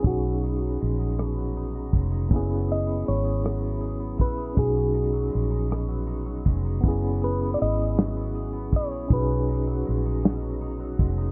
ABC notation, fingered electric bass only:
X:1
M:6/8
L:1/8
Q:3/8=53
K:B
V:1 name="Fingered electric bass" clef=bass
B,,,2 A,,,3 ^E,,, | F,,,2 G,,,3 A,,, | B,,,2 A,,,3 ^E,,, | F,,,2 G,,,3 A,,, |
B,,,2 A,,,3 ^E,,, |]